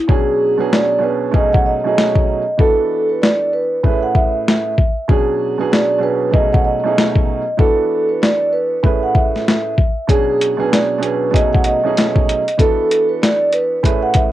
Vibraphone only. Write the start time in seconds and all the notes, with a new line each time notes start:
0.09 G#4
0.59 B4
0.73 D5
1.03 B4
1.34 D#5
1.53 F#5
1.66 D#5
2.59 A4
3.09 B4
3.22 D5
3.53 B4
3.85 E5
4.03 F#5
4.16 E5
5.09 G#4
5.59 B4
5.72 D5
6.03 B4
6.33 D#5
6.53 F#5
6.65 D#5
7.59 A4
8.09 B4
8.22 D5
8.53 B4
8.84 E5
9.03 F#5
9.15 E5
10.09 G#4
10.59 B4
10.72 D5
11.03 B4
11.34 D#5
11.53 F#5
11.66 D#5
12.59 A4
13.09 B4
13.22 D5
13.53 B4
13.85 E5
14.03 F#5
14.16 E5